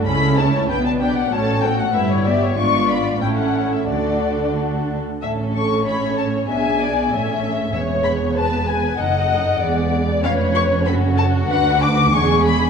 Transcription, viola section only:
\new Staff \with { instrumentName = "Viola section" } { \time 2/4 \key d \major \tempo 4 = 95 << { e'8 cis'8 d'8 b8 | cis'8 a8 e'8 g'8 | d'4 cis'4 | d'4. r8 |
\key a \major a'2 | gis'4 a'4 | gis'2 | a'4 gis'4 |
b'4 a'4 | b'4 gis'4 | } \\ { cis'8 a8 b8 d'8 | fis8 a8 g8 b8 | b4 a4 | a4. r8 |
cis'2 | d'4 cis'4 | b2 | dis'4 b4 |
cis'2 | d'2 | } >> }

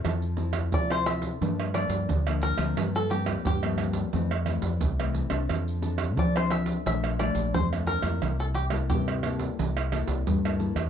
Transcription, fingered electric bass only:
\new Staff \with { instrumentName = "Fingered electric bass" } { \clef bass \time 4/4 \key f \major \tempo 4 = 88 f,4 f4 g,8. g,16 d,8. d,16 | g,4 g,4 f,8. f,16 c,8. c,16 | f,4 f4 bes,,8. bes,,16 f,8. f,16 | c,4 c4 c,8. c,16 g,8. e,16 | }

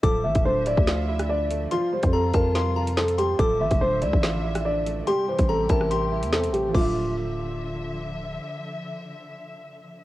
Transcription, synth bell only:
\new Staff \with { instrumentName = "Synth bell" } { \time 4/4 \key d \minor \tempo 4 = 143 d'''1 | c'''4 bes''8 a''8 c'''8 bes''4 c'''8 | d'''1 | c'''4 bes''8 a''8 c'''2 |
d'''2. r4 | r1 | }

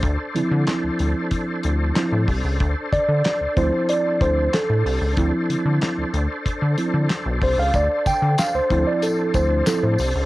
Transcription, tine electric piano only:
\new Staff \with { instrumentName = "Tine electric piano" } { \time 4/4 \key d \minor \tempo 4 = 93 << { r1 | r8 d''4 c''8 d''8 c''8 a'4 | r2. r8 c''16 f''16 | d''8 g''8 f''16 c''8 d''16 a'8 c''8 a'16 c''8. | } \\ { r8 <f c' e'>2~ <f c' e'>8 <f c' e'>8 r8 | r4. <f c' e'>4. r4 | <f c' e'>4. r4 <f c' e'>8 r4 | r4. <f c' e'>4. <f c' e'>8 r8 | } >> }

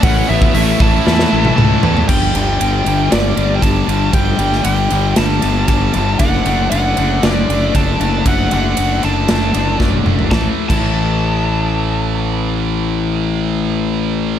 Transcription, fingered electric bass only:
\new Staff \with { instrumentName = "Fingered electric bass" } { \clef bass \time 4/4 \key g \lydian \tempo 4 = 116 a,,8 a,,8 a,,8 a,,8 e,8 a,,8 cis,8 e,8 | g,,8 g,,8 g,,8 g,,8 g,,8 g,,8 g,,8 g,,8 | g,,8 g,,8 g,,8 g,,8 g,,8 g,,8 g,,8 g,,8 | fis,,8 fis,,8 fis,,8 fis,,8 fis,,8 fis,,8 fis,,8 fis,,8 |
fis,,8 fis,,8 fis,,8 fis,,8 fis,,8 fis,,8 fis,,8 fis,,8 | a,,16 r8 a,,2.~ a,,16~ | a,,1 | }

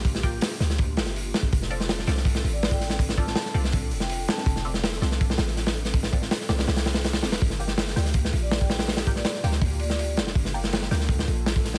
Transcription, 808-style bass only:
\new Staff \with { instrumentName = "808-style bass" } { \clef bass \time 4/4 \key g \minor \tempo 4 = 163 bes,,4 r8 d,4 g,,4 r8 | f,,4. c,4 a,,4.~ | a,,4 r8 c,4 f,,4 r8 | f,,4. c,4 a,,4.~ |
a,,4 r8 c,8 c,4. f,,8 | g,,4. d,4 bes,,4.~ | bes,,4 r8 d,8 d,4. f,,8 | g,,4. d,4 bes,,4. | }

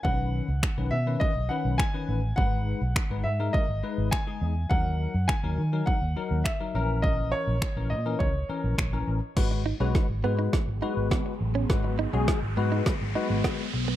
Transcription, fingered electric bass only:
\new Staff \with { instrumentName = "Fingered electric bass" } { \clef bass \time 4/4 \key gis \minor \tempo 4 = 103 b,,8. cis,16 r16 b,,16 b,8 r16 b,,16 r16 b,,16 r8 a,,8 | gis,,8. b,,16 r16 gis,,16 gis,8 r16 gis,,16 r16 gis,,16 r8 e,8 | dis,8. fis,16 r16 dis,16 dis8 r16 dis,16 r16 dis,16 r8 ais,,8~ | ais,,8. ais,,16 r16 ais,,16 ais,8 cis,8 r16 ais,,16 ais,,8 a,,16 r16 |
gis,,8. b,,16 r16 gis,,16 gis,8 r16 gis,,16 r16 gis,,16 r8 a,,8 | gis,,8. b,,16 r16 gis,,16 gis,8 r16 gis,,16 r16 gis,,16 r8 b,,8 | }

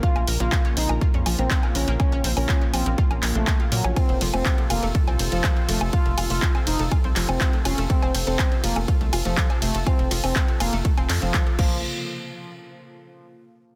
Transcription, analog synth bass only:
\new Staff \with { instrumentName = "Analog synth bass" } { \clef bass \time 4/4 \key f \phrygian \tempo 4 = 122 r16 bes,,16 bes,,16 bes,,16 r8 bes,,16 bes,,16 r16 f,16 bes,,16 bes,,16 r8 bes,,16 bes,,16 | r16 bes,,16 bes,,16 bes,,16 r8 bes,,16 bes,,16 r16 bes,,16 bes,,16 bes,,16 r8 bes,16 bes,,16 | r16 f,,16 f,,16 f,,16 r8 f,,16 f,,16 r16 c,16 f,,16 f,,16 r8 f,,16 f,,16 | r16 f,,16 f,,16 f,,16 r8 f,,16 f,,16 r16 c,16 f,,16 f,,16 r8 f,,16 f,,16 |
r16 f,,16 f,,16 f,,16 r8 f,,16 f,,16 r16 c,16 f,,16 f,,16 r8 f,,16 f,,16 | r16 f,,16 f,,16 f,,16 r8 f,,16 f,,16 r16 f,,16 f,16 f,,16 r8 bes,,8 | r1 | }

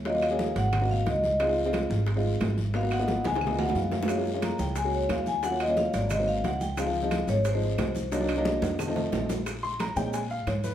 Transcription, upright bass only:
\new Staff \with { instrumentName = "Upright bass" } { \clef bass \time 4/4 \key des \major \tempo 4 = 179 ees,4. aes,,4. des,4~ | des,4. aes,,4. aes,,4~ | aes,,4. des,4. ges,4~ | ges,4. des,4. ees,4~ |
ees,4. aes,,4. des,4~ | des,4. aes,,4. c,4~ | c,4. f,4. bes,,4~ | bes,,4. bes,4. aes,4 | }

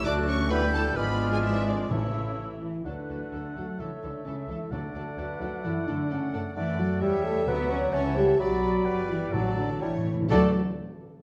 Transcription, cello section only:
\new Staff \with { instrumentName = "Cello section" } { \clef bass \time 2/4 \key d \major \tempo 4 = 130 d,2 | gis,2 | a,4. e8 | d4. fis8 |
e8 d8 cis8 e8 | d4. fis8 | e8 d8 cis8 r8 | e8 fis8 g8 a8 |
b8 cis'8 cis'8 g8 | fis4. e8 | fis8 d8 e4 | fis8 r4. | }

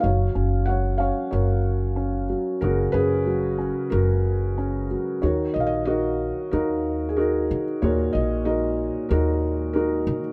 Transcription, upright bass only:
\new Staff \with { instrumentName = "Upright bass" } { \clef bass \time 4/4 \key ees \minor \tempo 4 = 93 ges,,8 ges,,4. ges,,2 | ges,,8 ges,,4. ges,,2 | ees,8 bes,,4. ees,4. ees16 r16 | ees,8 bes,,4. ees,4. ees16 r16 | }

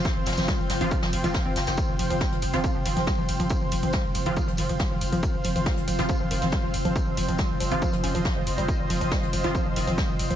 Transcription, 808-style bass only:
\new Staff \with { instrumentName = "808-style bass" } { \clef bass \time 4/4 \key c \phrygian \tempo 4 = 139 r16 f,,16 f,,16 f,,16 r16 f,,16 f,,16 f,,16 r16 f,,16 f,,16 f,,16 r16 f,,16 f,,16 f,,16 | r16 f,,16 f,,16 f,,16 r16 f,,16 f,,16 f,,16 r16 f,,16 f,,16 f,,16 r16 f,,16 f,,16 f,,16 | r16 f,,16 f,,16 f,,16 r16 f,,16 f,,16 f,,16 r16 f,,16 f,,16 f,,16 r16 f,,16 f,,16 f,,16 | r16 f,,16 f,,16 f,,16 r16 f,,16 f,,16 f,,16 r16 f,,16 f,,16 f,,16 r16 f,,16 f,,16 f,,16 |
r16 f,,16 f,,16 f,,16 r16 f,,16 f,,16 f,,16 r16 f,,16 f,,16 f,,16 r16 f,,16 f,,16 f,,16 | r16 f,,16 f,,16 f,,16 r16 f,,16 f,,16 f,,16 r16 f,,16 f,,16 f,,16 r16 f,,16 f,,16 f,,16 | }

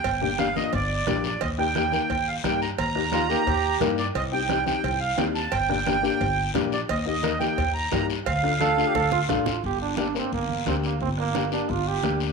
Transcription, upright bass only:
\new Staff \with { instrumentName = "Upright bass" } { \clef bass \time 4/4 \key g \minor \tempo 4 = 175 g,,2 g,,4 bes,,4 | ees,2 ees,4 g,4 | ees,2 ees,4 g,4 | c,2 c,4 ees,4 |
g,,2 g,,4 bes,,4 | ees,2 ees,4 g,4 | d,2 d,4 a,,4 | g,,2 g,,4 d,4 |
g,,2 g,,4 d,4 | }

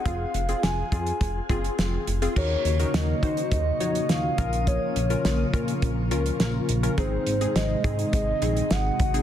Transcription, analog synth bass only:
\new Staff \with { instrumentName = "Analog synth bass" } { \clef bass \time 4/4 \key ees \dorian \tempo 4 = 104 f,,8 f,,8 f,,8 f,8 f,,8 ges,,8 f,,8 f,,8 | ees,8 ees,8 ees,8 ees8 ees,8 f,8 ees,8 bes,,8~ | bes,,8 bes,,8 bes,,8 bes,8 bes,,8 des,8 bes,,8 bes,,8 | aes,,8 aes,,8 aes,,8 aes,8 aes,,8 bes,,8 aes,,8 aes,,8 | }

